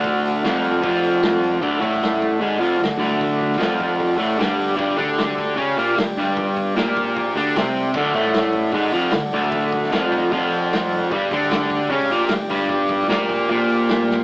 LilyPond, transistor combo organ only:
\new Staff \with { instrumentName = "Transistor combo organ" } { \time 4/4 \key g \lydian \tempo 4 = 152 <a' d'' fis''>1 | <a' d'' fis''>1~ | <a' d'' fis''>1 | <g' d'' g''>1~ |
<g' d'' g''>1 | <a' d'' fis''>1~ | <a' d'' fis''>1 | <g' d'' g''>1~ |
<g' d'' g''>1 | }